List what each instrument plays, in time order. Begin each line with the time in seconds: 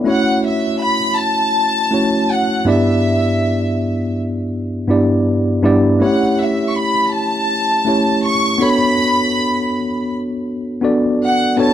0.04 tine electric piano A3 C#4 E4 F#4 C#5
0.09 violin section F#5
0.47 violin section E5
0.83 violin section B5
1.19 violin section A5
1.91 tine electric piano A3 C#4 E4 F#4 C#5
2.32 violin section F#5
2.65 tine electric piano G2 B3 D4 E4 G4 D5
2.69 violin section E5
4.87 tine electric piano G2 B3 D4 E4 G4 D5
5.62 tine electric piano G2 B3 D4 E4 G4 D5
5.99 tine electric piano A3 C#4 E4 G4 C#5, violin section F#5
6.40 violin section E5
6.69 violin section C#6
6.76 violin section B5
7.13 violin section A5
7.85 tine electric piano A3 C#4 E4 G4 C#5
8.25 violin section C#6
8.58 tine electric piano B3 D4 F#4 A4 C#5, violin section B5
10.81 tine electric piano B3 D4 F#4 A4 D5
11.25 violin section F#5
11.57 tine electric piano B3 D4 F#4 A4 C#5
11.61 violin section A5